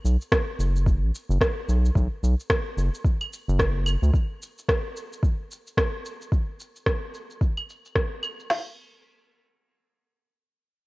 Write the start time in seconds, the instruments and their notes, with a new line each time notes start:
0.05 analog synth bass B1, cabasa
0.22 cabasa
0.32 kick, cross-stick, cabasa
0.59 analog synth bass F#1, cabasa
0.76 cabasa
0.86 kick, cabasa
1.02 analog synth bass A1
1.15 cabasa
1.29 analog synth bass F#1, cabasa
1.41 kick, cross-stick, cabasa
1.69 analog synth bass B1, cabasa
1.85 cabasa
1.95 analog synth bass B1, kick, cabasa
2.23 analog synth bass B1, cabasa
2.40 cabasa
2.50 kick, cross-stick, cabasa
2.77 analog synth bass F#1, cabasa
2.95 cabasa
3.04 kick, cabasa
3.21 claves
3.33 cabasa
3.48 analog synth bass F#1, cabasa
3.59 kick, cross-stick, cabasa
3.86 cabasa, claves
4.02 analog synth bass D2, cabasa
4.14 kick, cabasa
4.42 cabasa
4.58 cabasa
4.68 kick, cross-stick, cabasa
4.97 cabasa
5.13 cabasa
5.23 kick, cabasa
5.51 cabasa
5.67 cabasa
5.77 kick, cross-stick, cabasa
6.05 cabasa
6.21 cabasa
6.32 kick, cabasa
6.60 cabasa
6.76 cabasa
6.86 kick, cross-stick, cabasa
7.15 cabasa
7.30 cabasa
7.41 kick, cabasa
7.57 claves
7.70 cabasa
7.85 cabasa
7.96 kick, cross-stick, cabasa
8.23 cabasa, claves
8.40 cabasa
8.50 snare, crash